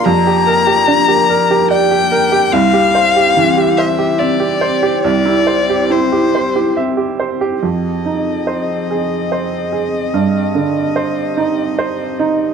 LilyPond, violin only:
\new Staff \with { instrumentName = "Violin" } { \time 3/4 \key f \dorian \tempo 4 = 72 bes''2 g''4 | f''4. e''8 d''4 | d''4 c''4 r4 | ees''2.~ |
ees''2. | }